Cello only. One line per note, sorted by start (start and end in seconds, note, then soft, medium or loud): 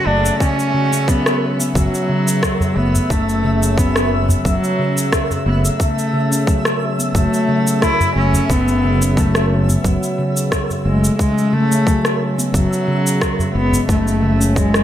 0.07 0.40 D4 medium
0.41 1.11 C#4 medium
1.09 1.60 B3 medium
1.76 2.78 F#3 medium
2.77 3.12 B3 medium
3.11 3.80 A3 loud
3.78 4.30 B3 medium
4.45 5.42 F#3 medium
5.47 5.62 B3 medium
5.80 6.77 A3 medium
7.15 7.84 A3 medium
7.83 8.16 E4 loud
8.17 8.52 C#4 medium
8.50 9.19 B3 medium
9.18 9.69 A3 medium
10.86 11.17 G#3 medium
11.19 11.55 G#3 loud
11.53 12.21 A3 loud
12.55 13.52 F#3 medium
13.56 13.87 B3 loud
13.90 14.59 A3 medium
14.58 14.84 G#3 medium